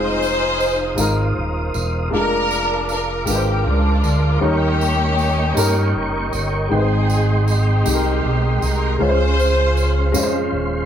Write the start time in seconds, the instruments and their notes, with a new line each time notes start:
Already playing: fingered electric bass F1, upright piano G#3 D#4 F4 C5, string section D#4 G#4 C5, tonewheel organ C5 F5 D#6
0.22 tambourine
0.60 tambourine
0.96 fingered electric bass G#1, upright piano G#3 D#4 F4, tambourine
1.00 upright piano A#4
1.36 fingered electric bass D#1
1.74 fingered electric bass E1, tambourine
2.10 fingered electric bass F1, upright piano G#3 D4 F4, tonewheel organ A#4 F5 D6
2.14 string section D4 A#4, upright piano G#4
2.21 upright piano A#4
2.51 tambourine
2.89 string section A#4, tambourine
3.25 fingered electric bass G#1, upright piano G#3 D4 F4 B4, string section G4, tambourine
3.36 upright piano C5
3.66 fingered electric bass C#2, string section G#3 D4 F4
4.04 fingered electric bass D2, tambourine
4.40 fingered electric bass D#2, upright piano D#3 G3 C#4 D#4, string section A#3 C#4, tonewheel organ D#5 G5 C#6
4.44 string section G4, upright piano A#4
4.81 tambourine
5.19 tambourine
5.54 fingered electric bass G2, upright piano G3 C#4 D#4 A#4, tambourine
5.95 fingered electric bass F#1
6.33 fingered electric bass G1, tambourine
6.69 fingered electric bass G#1, upright piano G#2 G#3 D#4 G5, tonewheel organ G#3 C6, string section C4 D#4 G#4
6.73 upright piano B4
6.79 upright piano C5
7.10 tambourine
7.48 string section C4 D#4 G4, tambourine
7.84 fingered electric bass C2, upright piano G#3 D#4 G4 G#4, tambourine
7.94 upright piano A#4
8.24 fingered electric bass B1
8.62 fingered electric bass C2, string section A#4, tambourine
8.99 fingered electric bass C#2, upright piano C#3 G#3 C#4 F4 B4, tonewheel organ C#4 F5, string section F4 G#4 C5
9.09 upright piano C5
9.39 tambourine
9.77 tambourine
10.12 fingered electric bass F2, upright piano G#3 C#4 F4 C5, tambourine
10.23 upright piano C5
10.53 fingered electric bass D#1